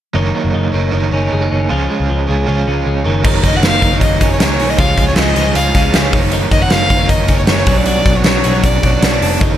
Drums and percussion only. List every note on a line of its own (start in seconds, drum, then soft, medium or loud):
3.25 kick loud
3.25 crash loud
3.44 kick medium
3.44 closed hi-hat medium
3.63 snare loud
3.63 closed hi-hat medium
3.82 kick medium
3.82 closed hi-hat medium
4.01 kick medium
4.01 closed hi-hat medium
4.21 kick medium
4.21 closed hi-hat medium
4.40 snare loud
4.40 closed hi-hat medium
4.60 open hi-hat medium
4.79 kick loud
4.79 closed hi-hat medium
4.98 kick medium
4.98 closed hi-hat medium
5.16 snare loud
5.16 closed hi-hat medium
5.36 closed hi-hat medium
5.55 closed hi-hat medium
5.75 kick medium
5.75 snare soft
5.75 closed hi-hat medium
5.94 snare loud
5.94 closed hi-hat medium
6.13 kick loud
6.13 open hi-hat medium
6.32 closed hi-hat medium
6.51 kick medium
6.51 closed hi-hat medium
6.70 snare loud
6.70 closed hi-hat medium
6.90 kick medium
6.90 closed hi-hat medium
7.09 kick medium
7.09 closed hi-hat medium
7.28 kick medium
7.28 closed hi-hat medium
7.47 snare loud
7.47 closed hi-hat medium
7.66 kick loud
7.66 open hi-hat medium
7.86 closed hi-hat medium
8.06 kick medium
8.06 closed hi-hat medium
8.24 snare loud
8.24 closed hi-hat medium
8.44 closed hi-hat medium
8.64 kick medium
8.64 closed hi-hat medium
8.83 kick medium
8.83 closed hi-hat medium
9.02 snare loud
9.02 closed hi-hat medium
9.22 open hi-hat medium
9.41 kick loud
9.41 closed hi-hat medium